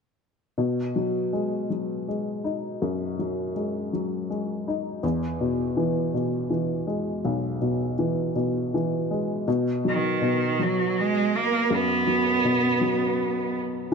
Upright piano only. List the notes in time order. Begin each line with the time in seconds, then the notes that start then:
0.58 B2
0.96 F#3
1.33 G#3
1.70 F#3
2.08 G#3
2.44 D#4
2.82 F#2
3.19 F#3
3.56 G#3
3.93 F#3
4.30 G#3
4.68 D#4
5.03 E2
5.41 B2
5.77 E3
6.14 B2
6.50 E3
6.87 G#3
7.25 B1
7.62 B2
7.99 E3
8.36 B2
8.74 E3
9.11 G#3
9.48 B2
9.85 F#3
10.22 B2
10.59 F#3
11.70 F#2
12.07 F#3
12.45 B2
12.81 F#3